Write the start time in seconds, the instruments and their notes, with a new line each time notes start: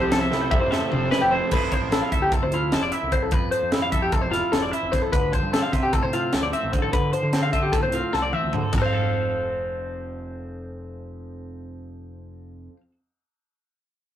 Already playing: overdriven electric guitar F2 F3 A3 C4, clean electric guitar F2 F3 E4 A4 C5
0.01 picked electric bass C2, clean electric guitar G4
0.10 overdriven electric guitar C3 F3 A3 C4, clean electric guitar A4, snare, closed hi-hat
0.21 clean electric guitar E5
0.31 picked electric bass C2, overdriven electric guitar F3 A3 C4, clean electric guitar E4, snare
0.41 clean electric guitar C5
0.50 overdriven electric guitar F2 C3 F3 A3 C4, clean electric guitar C3 E5, kick
0.61 picked electric bass F2, clean electric guitar C5
0.71 clean electric guitar A4 E5, snare
0.90 picked electric bass F1, overdriven electric guitar C3 F3 A3 C4, clean electric guitar F3 C5, mid tom
1.09 overdriven electric guitar F3 A3 C4, clean electric guitar B4, snare
1.13 clean electric guitar E4
1.22 picked electric bass F1, clean electric guitar G4
1.30 overdriven electric guitar F2 C3 F3 A3 C4, clean electric guitar F2 C5
1.51 picked electric bass F1, clean electric guitar F2 F3 E4 A4 B4 C5, kick, crash
1.72 clean electric guitar F3 C5, kick, closed hi-hat
1.82 picked electric bass A1
1.92 clean electric guitar E4 A4, snare, closed hi-hat
2.02 clean electric guitar F5
2.12 picked electric bass D2, clean electric guitar A4 E5, kick, closed hi-hat
2.22 clean electric guitar G4
2.31 clean electric guitar C3 A4, kick, closed hi-hat
2.43 picked electric bass D2, clean electric guitar C5
2.52 clean electric guitar E4 F4, closed hi-hat
2.72 picked electric bass F1, clean electric guitar F3 A4, snare, closed hi-hat
2.83 clean electric guitar D5
2.92 clean electric guitar E4 E5, closed hi-hat
3.03 picked electric bass C2
3.12 clean electric guitar F2 C5, kick, closed hi-hat
3.23 clean electric guitar A4
3.31 picked electric bass F2, clean electric guitar F2 B4, kick, closed hi-hat
3.51 clean electric guitar F3 C5, closed hi-hat
3.63 picked electric bass F2
3.72 clean electric guitar E4 A4, snare, closed hi-hat
3.82 clean electric guitar F5
3.92 picked electric bass F2, clean electric guitar A4 E5, kick, closed hi-hat
4.02 clean electric guitar G4
4.12 clean electric guitar C3 A4, kick, closed hi-hat
4.22 picked electric bass E1, clean electric guitar C5
4.31 clean electric guitar E4 F4, snare, closed hi-hat
4.52 picked electric bass E1, clean electric guitar F3 A4, snare, closed hi-hat
4.62 clean electric guitar D5
4.71 clean electric guitar E4 E5, closed hi-hat
4.83 picked electric bass F1
4.92 clean electric guitar F2 C5, kick, snare, closed hi-hat
5.02 clean electric guitar A4
5.12 picked electric bass D2, clean electric guitar D3 B4, kick, closed hi-hat
5.32 clean electric guitar F3 C5, kick, closed hi-hat
5.43 picked electric bass G2
5.53 clean electric guitar C4 A4, snare, closed hi-hat
5.62 clean electric guitar F5
5.73 picked electric bass C3, clean electric guitar F4 E5, kick, snare, closed hi-hat
5.83 clean electric guitar G4
5.93 clean electric guitar A2 A4, kick, closed hi-hat
6.03 picked electric bass C3, clean electric guitar C5
6.13 clean electric guitar C4 F4, closed hi-hat
6.33 picked electric bass D2, clean electric guitar F3 A4, snare, closed hi-hat
6.43 clean electric guitar D5
6.53 clean electric guitar C4 E5, closed hi-hat
6.63 picked electric bass A1
6.72 clean electric guitar D3 C5, kick, closed hi-hat
6.82 clean electric guitar A4
6.93 clean electric guitar D3 B4, picked electric bass D3, kick, closed hi-hat
7.13 clean electric guitar F3 C5, closed hi-hat
7.23 picked electric bass D3
7.33 clean electric guitar C4 A4, snare, closed hi-hat
7.43 clean electric guitar F5
7.53 picked electric bass D3, clean electric guitar F4 E5, kick, closed hi-hat
7.62 clean electric guitar G4
7.72 clean electric guitar A2 A4, kick, snare, closed hi-hat
7.83 picked electric bass C2, clean electric guitar C5
7.92 clean electric guitar C4 F4, closed hi-hat
8.13 picked electric bass C2, clean electric guitar F3 A4, snare
8.22 clean electric guitar D5
8.33 clean electric guitar C4 E5, mid tom
8.44 picked electric bass D2
8.52 clean electric guitar D3 C5, floor tom
8.63 clean electric guitar A4
8.73 picked electric bass F1, clean electric guitar F2, kick, floor tom, crash
8.78 clean electric guitar F3 A4
8.82 clean electric guitar C4 C5
8.86 clean electric guitar F5
8.93 clean electric guitar A4